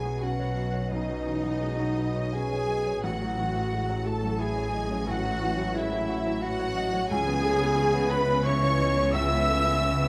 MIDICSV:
0, 0, Header, 1, 11, 480
1, 0, Start_track
1, 0, Tempo, 701754
1, 631, Time_signature, 3, 2, 24, 8
1, 2079, Tempo, 674916
1, 5439, Tempo, 688863
1, 7055, End_track
2, 0, Start_track
2, 0, Title_t, "Flute"
2, 0, Program_c, 0, 73
2, 0, Note_on_c, 0, 80, 59
2, 144, Note_on_c, 0, 78, 57
2, 154, Note_off_c, 0, 80, 0
2, 618, Note_off_c, 0, 78, 0
2, 622, Note_on_c, 0, 75, 71
2, 1592, Note_on_c, 0, 80, 78
2, 1603, Note_off_c, 0, 75, 0
2, 2066, Note_off_c, 0, 80, 0
2, 2070, Note_on_c, 0, 78, 69
2, 2798, Note_on_c, 0, 81, 76
2, 2808, Note_off_c, 0, 78, 0
2, 3048, Note_on_c, 0, 80, 85
2, 3059, Note_off_c, 0, 81, 0
2, 3362, Note_off_c, 0, 80, 0
2, 3532, Note_on_c, 0, 78, 81
2, 3983, Note_off_c, 0, 78, 0
2, 4004, Note_on_c, 0, 76, 94
2, 4479, Note_on_c, 0, 78, 88
2, 4490, Note_off_c, 0, 76, 0
2, 4960, Note_off_c, 0, 78, 0
2, 4964, Note_on_c, 0, 80, 98
2, 5678, Note_on_c, 0, 83, 102
2, 5688, Note_off_c, 0, 80, 0
2, 5908, Note_off_c, 0, 83, 0
2, 5912, Note_on_c, 0, 85, 99
2, 6381, Note_on_c, 0, 88, 102
2, 6392, Note_off_c, 0, 85, 0
2, 7055, Note_off_c, 0, 88, 0
2, 7055, End_track
3, 0, Start_track
3, 0, Title_t, "Violin section"
3, 0, Program_c, 1, 48
3, 0, Note_on_c, 1, 80, 67
3, 154, Note_off_c, 1, 80, 0
3, 156, Note_on_c, 1, 78, 60
3, 628, Note_on_c, 1, 75, 67
3, 631, Note_off_c, 1, 78, 0
3, 1585, Note_off_c, 1, 75, 0
3, 1604, Note_on_c, 1, 80, 80
3, 2074, Note_on_c, 1, 78, 70
3, 2079, Note_off_c, 1, 80, 0
3, 2789, Note_off_c, 1, 78, 0
3, 2803, Note_on_c, 1, 81, 69
3, 3047, Note_off_c, 1, 81, 0
3, 3050, Note_on_c, 1, 80, 81
3, 3522, Note_off_c, 1, 80, 0
3, 3529, Note_on_c, 1, 78, 85
3, 4009, Note_on_c, 1, 76, 81
3, 4010, Note_off_c, 1, 78, 0
3, 4487, Note_off_c, 1, 76, 0
3, 4488, Note_on_c, 1, 78, 98
3, 4962, Note_on_c, 1, 80, 107
3, 4965, Note_off_c, 1, 78, 0
3, 5660, Note_off_c, 1, 80, 0
3, 5677, Note_on_c, 1, 83, 92
3, 5913, Note_on_c, 1, 85, 103
3, 5916, Note_off_c, 1, 83, 0
3, 6390, Note_off_c, 1, 85, 0
3, 6396, Note_on_c, 1, 88, 112
3, 7055, Note_off_c, 1, 88, 0
3, 7055, End_track
4, 0, Start_track
4, 0, Title_t, "Violin section"
4, 0, Program_c, 2, 48
4, 0, Note_on_c, 2, 80, 62
4, 153, Note_on_c, 2, 78, 63
4, 157, Note_off_c, 2, 80, 0
4, 626, Note_on_c, 2, 75, 73
4, 630, Note_off_c, 2, 78, 0
4, 1584, Note_off_c, 2, 75, 0
4, 1603, Note_on_c, 2, 80, 90
4, 2079, Note_off_c, 2, 80, 0
4, 2079, Note_on_c, 2, 78, 70
4, 2792, Note_off_c, 2, 78, 0
4, 2810, Note_on_c, 2, 81, 81
4, 3050, Note_off_c, 2, 81, 0
4, 3051, Note_on_c, 2, 80, 88
4, 3530, Note_on_c, 2, 78, 88
4, 3532, Note_off_c, 2, 80, 0
4, 4011, Note_off_c, 2, 78, 0
4, 4017, Note_on_c, 2, 76, 85
4, 4487, Note_on_c, 2, 78, 103
4, 4491, Note_off_c, 2, 76, 0
4, 4964, Note_off_c, 2, 78, 0
4, 4967, Note_on_c, 2, 80, 101
4, 5677, Note_off_c, 2, 80, 0
4, 5681, Note_on_c, 2, 83, 96
4, 5913, Note_off_c, 2, 83, 0
4, 5924, Note_on_c, 2, 85, 110
4, 6386, Note_off_c, 2, 85, 0
4, 6400, Note_on_c, 2, 88, 107
4, 7055, Note_off_c, 2, 88, 0
4, 7055, End_track
5, 0, Start_track
5, 0, Title_t, "Clarinet"
5, 0, Program_c, 3, 71
5, 0, Note_on_c, 3, 68, 59
5, 156, Note_on_c, 3, 66, 66
5, 166, Note_off_c, 3, 68, 0
5, 637, Note_on_c, 3, 63, 80
5, 647, Note_off_c, 3, 66, 0
5, 1604, Note_on_c, 3, 68, 75
5, 1614, Note_off_c, 3, 63, 0
5, 2079, Note_off_c, 3, 68, 0
5, 2088, Note_on_c, 3, 66, 62
5, 2808, Note_on_c, 3, 69, 65
5, 2818, Note_off_c, 3, 66, 0
5, 3053, Note_on_c, 3, 68, 77
5, 3064, Note_off_c, 3, 69, 0
5, 3364, Note_off_c, 3, 68, 0
5, 3529, Note_on_c, 3, 66, 89
5, 4011, Note_on_c, 3, 64, 94
5, 4022, Note_off_c, 3, 66, 0
5, 4483, Note_on_c, 3, 66, 90
5, 4494, Note_off_c, 3, 64, 0
5, 4962, Note_off_c, 3, 66, 0
5, 4974, Note_on_c, 3, 68, 107
5, 5675, Note_on_c, 3, 71, 87
5, 5685, Note_off_c, 3, 68, 0
5, 5917, Note_on_c, 3, 73, 106
5, 5928, Note_off_c, 3, 71, 0
5, 6397, Note_on_c, 3, 76, 111
5, 6407, Note_off_c, 3, 73, 0
5, 7055, Note_off_c, 3, 76, 0
5, 7055, End_track
6, 0, Start_track
6, 0, Title_t, "Viola section"
6, 0, Program_c, 4, 48
6, 0, Note_on_c, 4, 68, 65
6, 151, Note_on_c, 4, 66, 77
6, 152, Note_off_c, 4, 68, 0
6, 626, Note_on_c, 4, 63, 83
6, 629, Note_off_c, 4, 66, 0
6, 1603, Note_off_c, 4, 63, 0
6, 1604, Note_on_c, 4, 68, 97
6, 2070, Note_off_c, 4, 68, 0
6, 2074, Note_on_c, 4, 66, 85
6, 2800, Note_on_c, 4, 69, 91
6, 2803, Note_off_c, 4, 66, 0
6, 3043, Note_on_c, 4, 68, 103
6, 3045, Note_off_c, 4, 69, 0
6, 3528, Note_off_c, 4, 68, 0
6, 3530, Note_on_c, 4, 66, 114
6, 4001, Note_off_c, 4, 66, 0
6, 4018, Note_on_c, 4, 64, 95
6, 4491, Note_off_c, 4, 64, 0
6, 4495, Note_on_c, 4, 66, 111
6, 4958, Note_off_c, 4, 66, 0
6, 4973, Note_on_c, 4, 68, 127
6, 5666, Note_off_c, 4, 68, 0
6, 5673, Note_on_c, 4, 71, 117
6, 5914, Note_off_c, 4, 71, 0
6, 5916, Note_on_c, 4, 73, 118
6, 6391, Note_on_c, 4, 76, 120
6, 6392, Note_off_c, 4, 73, 0
6, 7055, Note_off_c, 4, 76, 0
6, 7055, End_track
7, 0, Start_track
7, 0, Title_t, "Harp"
7, 0, Program_c, 5, 46
7, 0, Note_on_c, 5, 47, 55
7, 0, Note_on_c, 5, 54, 40
7, 0, Note_on_c, 5, 59, 33
7, 0, Note_on_c, 5, 61, 39
7, 0, Note_on_c, 5, 66, 46
7, 0, Note_on_c, 5, 71, 39
7, 0, Note_on_c, 5, 83, 49
7, 34, Note_on_c, 5, 73, 42
7, 139, Note_off_c, 5, 71, 0
7, 147, Note_on_c, 5, 71, 48
7, 260, Note_off_c, 5, 54, 0
7, 268, Note_on_c, 5, 54, 46
7, 378, Note_off_c, 5, 59, 0
7, 386, Note_on_c, 5, 59, 42
7, 496, Note_off_c, 5, 54, 0
7, 504, Note_on_c, 5, 54, 40
7, 618, Note_off_c, 5, 47, 0
7, 626, Note_on_c, 5, 47, 64
7, 736, Note_off_c, 5, 59, 0
7, 744, Note_on_c, 5, 59, 45
7, 855, Note_off_c, 5, 61, 0
7, 863, Note_on_c, 5, 61, 44
7, 973, Note_off_c, 5, 71, 0
7, 981, Note_on_c, 5, 71, 44
7, 1097, Note_off_c, 5, 66, 0
7, 1105, Note_on_c, 5, 66, 51
7, 1217, Note_off_c, 5, 73, 0
7, 1225, Note_on_c, 5, 73, 52
7, 1339, Note_off_c, 5, 83, 0
7, 1348, Note_on_c, 5, 83, 56
7, 1467, Note_off_c, 5, 73, 0
7, 1475, Note_on_c, 5, 73, 52
7, 1591, Note_off_c, 5, 71, 0
7, 1599, Note_on_c, 5, 71, 53
7, 1707, Note_off_c, 5, 54, 0
7, 1715, Note_on_c, 5, 54, 44
7, 1831, Note_off_c, 5, 59, 0
7, 1839, Note_on_c, 5, 59, 44
7, 1946, Note_off_c, 5, 54, 0
7, 1954, Note_on_c, 5, 54, 42
7, 2071, Note_on_c, 5, 45, 72
7, 2095, Note_off_c, 5, 83, 0
7, 2096, Note_off_c, 5, 59, 0
7, 2096, Note_off_c, 5, 71, 0
7, 2097, Note_off_c, 5, 47, 0
7, 2188, Note_off_c, 5, 54, 0
7, 2197, Note_on_c, 5, 54, 51
7, 2324, Note_on_c, 5, 64, 50
7, 2433, Note_off_c, 5, 73, 0
7, 2441, Note_on_c, 5, 73, 55
7, 2557, Note_off_c, 5, 66, 0
7, 2566, Note_on_c, 5, 66, 50
7, 2688, Note_on_c, 5, 76, 49
7, 2810, Note_on_c, 5, 85, 64
7, 2924, Note_off_c, 5, 76, 0
7, 2933, Note_on_c, 5, 76, 53
7, 3043, Note_off_c, 5, 73, 0
7, 3051, Note_on_c, 5, 73, 63
7, 3164, Note_off_c, 5, 54, 0
7, 3172, Note_on_c, 5, 54, 56
7, 3295, Note_on_c, 5, 52, 47
7, 3411, Note_off_c, 5, 54, 0
7, 3420, Note_on_c, 5, 54, 48
7, 3530, Note_off_c, 5, 45, 0
7, 3539, Note_on_c, 5, 45, 71
7, 3588, Note_off_c, 5, 61, 0
7, 3652, Note_off_c, 5, 52, 0
7, 3771, Note_off_c, 5, 64, 0
7, 3780, Note_on_c, 5, 64, 57
7, 3889, Note_off_c, 5, 73, 0
7, 3897, Note_on_c, 5, 73, 57
7, 4003, Note_off_c, 5, 66, 0
7, 4012, Note_on_c, 5, 66, 63
7, 4130, Note_off_c, 5, 76, 0
7, 4138, Note_on_c, 5, 76, 66
7, 4246, Note_off_c, 5, 85, 0
7, 4254, Note_on_c, 5, 85, 71
7, 4364, Note_off_c, 5, 76, 0
7, 4372, Note_on_c, 5, 76, 60
7, 4481, Note_off_c, 5, 73, 0
7, 4489, Note_on_c, 5, 73, 66
7, 4604, Note_off_c, 5, 54, 0
7, 4613, Note_on_c, 5, 54, 61
7, 4729, Note_on_c, 5, 52, 60
7, 4846, Note_off_c, 5, 54, 0
7, 4854, Note_on_c, 5, 54, 61
7, 4971, Note_on_c, 5, 49, 80
7, 4984, Note_off_c, 5, 66, 0
7, 4985, Note_off_c, 5, 52, 0
7, 4988, Note_off_c, 5, 45, 0
7, 4988, Note_off_c, 5, 54, 0
7, 5093, Note_on_c, 5, 59, 68
7, 5205, Note_off_c, 5, 64, 0
7, 5214, Note_on_c, 5, 64, 65
7, 5323, Note_off_c, 5, 73, 0
7, 5332, Note_on_c, 5, 73, 64
7, 5450, Note_on_c, 5, 71, 62
7, 5559, Note_off_c, 5, 76, 0
7, 5567, Note_on_c, 5, 76, 67
7, 5679, Note_off_c, 5, 85, 0
7, 5687, Note_on_c, 5, 85, 78
7, 5796, Note_off_c, 5, 76, 0
7, 5804, Note_on_c, 5, 76, 63
7, 5920, Note_off_c, 5, 73, 0
7, 5929, Note_on_c, 5, 73, 72
7, 6040, Note_off_c, 5, 59, 0
7, 6049, Note_on_c, 5, 59, 66
7, 6160, Note_on_c, 5, 56, 61
7, 6272, Note_off_c, 5, 59, 0
7, 6280, Note_on_c, 5, 59, 61
7, 6395, Note_off_c, 5, 49, 0
7, 6403, Note_on_c, 5, 49, 85
7, 6512, Note_off_c, 5, 56, 0
7, 6521, Note_on_c, 5, 56, 63
7, 6636, Note_off_c, 5, 64, 0
7, 6644, Note_on_c, 5, 64, 64
7, 6755, Note_off_c, 5, 73, 0
7, 6763, Note_on_c, 5, 73, 66
7, 6878, Note_off_c, 5, 71, 0
7, 6887, Note_on_c, 5, 71, 65
7, 7001, Note_off_c, 5, 76, 0
7, 7009, Note_on_c, 5, 76, 68
7, 7055, Note_off_c, 5, 49, 0
7, 7055, Note_off_c, 5, 56, 0
7, 7055, Note_off_c, 5, 59, 0
7, 7055, Note_off_c, 5, 64, 0
7, 7055, Note_off_c, 5, 71, 0
7, 7055, Note_off_c, 5, 73, 0
7, 7055, Note_off_c, 5, 76, 0
7, 7055, Note_off_c, 5, 85, 0
7, 7055, End_track
8, 0, Start_track
8, 0, Title_t, "Grand piano"
8, 0, Program_c, 6, 0
8, 0, Control_c, 6, 64, 127
8, 0, Note_on_c, 6, 35, 56
8, 0, Note_on_c, 6, 52, 35
8, 0, Note_on_c, 6, 54, 43
8, 0, Note_on_c, 6, 56, 40
8, 0, Note_on_c, 6, 66, 40
8, 35, Note_off_c, 6, 54, 0
8, 35, Note_on_c, 6, 54, 39
8, 109, Note_off_c, 6, 66, 0
8, 156, Note_on_c, 6, 61, 44
8, 225, Note_off_c, 6, 54, 0
8, 270, Note_on_c, 6, 73, 45
8, 345, Note_off_c, 6, 61, 0
8, 388, Note_on_c, 6, 75, 36
8, 463, Note_off_c, 6, 73, 0
8, 505, Note_on_c, 6, 73, 43
8, 510, Note_off_c, 6, 75, 0
8, 603, Note_off_c, 6, 35, 0
8, 625, Note_on_c, 6, 35, 54
8, 644, Control_c, 6, 64, 0
8, 649, Note_off_c, 6, 56, 0
8, 650, Note_off_c, 6, 52, 0
8, 699, Note_off_c, 6, 73, 0
8, 742, Note_on_c, 6, 54, 42
8, 753, Control_c, 6, 64, 127
8, 863, Note_on_c, 6, 52, 40
8, 936, Note_off_c, 6, 54, 0
8, 980, Note_on_c, 6, 54, 42
8, 985, Note_off_c, 6, 52, 0
8, 1101, Note_on_c, 6, 56, 42
8, 1177, Note_off_c, 6, 54, 0
8, 1227, Note_off_c, 6, 56, 0
8, 1227, Note_on_c, 6, 54, 46
8, 1354, Note_on_c, 6, 66, 42
8, 1430, Note_off_c, 6, 54, 0
8, 1477, Note_on_c, 6, 54, 44
8, 1555, Note_off_c, 6, 66, 0
8, 1609, Note_on_c, 6, 61, 48
8, 1676, Note_off_c, 6, 54, 0
8, 1730, Note_on_c, 6, 73, 44
8, 1800, Note_off_c, 6, 61, 0
8, 1846, Note_on_c, 6, 75, 38
8, 1918, Note_off_c, 6, 73, 0
8, 1962, Note_on_c, 6, 73, 50
8, 1963, Note_off_c, 6, 75, 0
8, 2050, Note_off_c, 6, 35, 0
8, 2077, Note_on_c, 6, 33, 66
8, 2079, Note_off_c, 6, 73, 0
8, 2093, Control_c, 6, 64, 0
8, 2193, Control_c, 6, 64, 127
8, 2206, Note_on_c, 6, 54, 44
8, 2319, Note_on_c, 6, 52, 42
8, 2398, Note_off_c, 6, 54, 0
8, 2442, Note_off_c, 6, 52, 0
8, 2448, Note_on_c, 6, 54, 47
8, 2565, Note_on_c, 6, 56, 40
8, 2639, Note_off_c, 6, 54, 0
8, 2686, Note_off_c, 6, 56, 0
8, 2687, Note_on_c, 6, 54, 54
8, 2810, Note_on_c, 6, 66, 45
8, 2880, Note_off_c, 6, 54, 0
8, 2928, Note_on_c, 6, 54, 49
8, 3002, Note_off_c, 6, 66, 0
8, 3041, Note_on_c, 6, 64, 56
8, 3121, Note_off_c, 6, 54, 0
8, 3165, Note_on_c, 6, 73, 53
8, 3238, Note_off_c, 6, 64, 0
8, 3288, Note_on_c, 6, 75, 50
8, 3360, Note_off_c, 6, 73, 0
8, 3409, Note_on_c, 6, 73, 49
8, 3410, Note_off_c, 6, 75, 0
8, 3501, Note_off_c, 6, 33, 0
8, 3523, Note_on_c, 6, 33, 63
8, 3543, Control_c, 6, 64, 0
8, 3602, Note_off_c, 6, 73, 0
8, 3643, Note_on_c, 6, 54, 57
8, 3664, Control_c, 6, 64, 127
8, 3762, Note_on_c, 6, 52, 53
8, 3839, Note_off_c, 6, 54, 0
8, 3884, Note_on_c, 6, 54, 52
8, 3887, Note_off_c, 6, 52, 0
8, 4005, Note_on_c, 6, 56, 53
8, 4079, Note_off_c, 6, 54, 0
8, 4125, Note_on_c, 6, 54, 64
8, 4128, Note_off_c, 6, 56, 0
8, 4247, Note_on_c, 6, 66, 60
8, 4319, Note_off_c, 6, 54, 0
8, 4369, Note_on_c, 6, 54, 61
8, 4439, Note_off_c, 6, 66, 0
8, 4485, Note_on_c, 6, 64, 56
8, 4559, Note_off_c, 6, 54, 0
8, 4606, Note_on_c, 6, 73, 59
8, 4677, Note_off_c, 6, 64, 0
8, 4733, Note_on_c, 6, 75, 59
8, 4797, Note_off_c, 6, 73, 0
8, 4849, Note_off_c, 6, 75, 0
8, 4849, Note_on_c, 6, 73, 59
8, 4932, Note_off_c, 6, 33, 0
8, 4966, Note_off_c, 6, 73, 0
8, 4973, Note_on_c, 6, 37, 74
8, 4977, Control_c, 6, 64, 0
8, 5086, Note_on_c, 6, 59, 59
8, 5094, Control_c, 6, 64, 127
8, 5203, Note_on_c, 6, 57, 56
8, 5274, Note_off_c, 6, 59, 0
8, 5321, Note_off_c, 6, 57, 0
8, 5325, Note_on_c, 6, 59, 61
8, 5442, Note_on_c, 6, 61, 58
8, 5512, Note_off_c, 6, 59, 0
8, 5558, Note_off_c, 6, 61, 0
8, 5561, Note_on_c, 6, 59, 68
8, 5681, Note_on_c, 6, 71, 55
8, 5749, Note_off_c, 6, 59, 0
8, 5801, Note_on_c, 6, 59, 69
8, 5869, Note_off_c, 6, 71, 0
8, 5925, Note_on_c, 6, 64, 68
8, 5989, Note_off_c, 6, 59, 0
8, 6038, Note_on_c, 6, 73, 65
8, 6111, Note_off_c, 6, 64, 0
8, 6159, Note_on_c, 6, 75, 55
8, 6226, Note_off_c, 6, 73, 0
8, 6275, Note_off_c, 6, 75, 0
8, 6281, Note_on_c, 6, 73, 66
8, 6367, Note_off_c, 6, 37, 0
8, 6395, Note_on_c, 6, 37, 84
8, 6405, Control_c, 6, 64, 0
8, 6468, Note_off_c, 6, 73, 0
8, 6515, Note_on_c, 6, 59, 64
8, 6532, Control_c, 6, 64, 127
8, 6633, Note_on_c, 6, 57, 59
8, 6708, Note_off_c, 6, 59, 0
8, 6750, Note_on_c, 6, 59, 61
8, 6755, Note_off_c, 6, 57, 0
8, 6869, Note_on_c, 6, 61, 55
8, 6947, Note_off_c, 6, 59, 0
8, 6994, Note_off_c, 6, 61, 0
8, 6996, Note_on_c, 6, 59, 64
8, 7055, Note_off_c, 6, 37, 0
8, 7055, Note_off_c, 6, 59, 0
8, 7055, End_track
9, 0, Start_track
9, 0, Title_t, "French horn section"
9, 0, Program_c, 7, 60
9, 0, Note_on_c, 7, 54, 47
9, 0, Note_on_c, 7, 61, 49
9, 2051, Note_off_c, 7, 54, 0
9, 2051, Note_off_c, 7, 61, 0
9, 2077, Note_on_c, 7, 52, 59
9, 2077, Note_on_c, 7, 61, 67
9, 4845, Note_off_c, 7, 52, 0
9, 4845, Note_off_c, 7, 61, 0
9, 4966, Note_on_c, 7, 61, 72
9, 4967, Note_on_c, 7, 52, 68
9, 7055, Note_off_c, 7, 52, 0
9, 7055, Note_off_c, 7, 61, 0
9, 7055, End_track
10, 0, Start_track
10, 0, Title_t, "Cello section"
10, 0, Program_c, 8, 48
10, 0, Note_on_c, 8, 47, 60
10, 2050, Note_off_c, 8, 47, 0
10, 2081, Note_on_c, 8, 45, 66
10, 4965, Note_off_c, 8, 45, 0
10, 4969, Note_on_c, 8, 49, 88
10, 7055, Note_off_c, 8, 49, 0
10, 7055, End_track
11, 0, Start_track
11, 0, Title_t, "Double bass section"
11, 0, Program_c, 10, 48
11, 0, Note_on_c, 10, 35, 60
11, 2049, Note_off_c, 10, 35, 0
11, 2078, Note_on_c, 10, 33, 74
11, 4964, Note_off_c, 10, 33, 0
11, 4967, Note_on_c, 10, 37, 90
11, 7055, Note_off_c, 10, 37, 0
11, 7055, End_track
0, 0, End_of_file